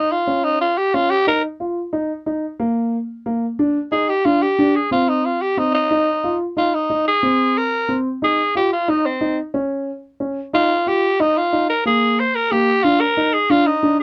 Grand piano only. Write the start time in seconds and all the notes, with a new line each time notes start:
Already playing: D#4
0.27 C#4
0.94 C#4
1.27 D#4
1.60 F4
1.93 D#4
2.26 D#4
2.60 A#3
3.26 A#3
3.59 D4
3.92 D#4
4.25 D4
4.59 D4
4.91 C4
5.57 C4
5.91 D#4
6.24 F4
6.57 D#4
6.90 D#4
7.23 C4
7.89 C4
8.22 D#4
8.55 F4
8.88 D#4
9.21 D#4
9.54 C#4
10.20 C#4
10.53 D#4
10.87 F4
11.20 D#4
11.53 D#4
11.85 A#3
12.52 A#3
12.84 D4
13.17 D#4
13.50 D4
13.83 D4